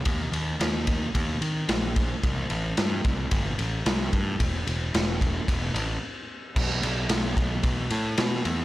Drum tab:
CC |--------|--------|--------|x-------|
RD |xxxxxxxx|xxxxxxxx|xxxxxx--|-xxxxxxx|
SD |--o---o-|--o---o-|--o-----|--o---o-|
BD |o--oo--o|o--oo--o|o--oo---|o--oo---|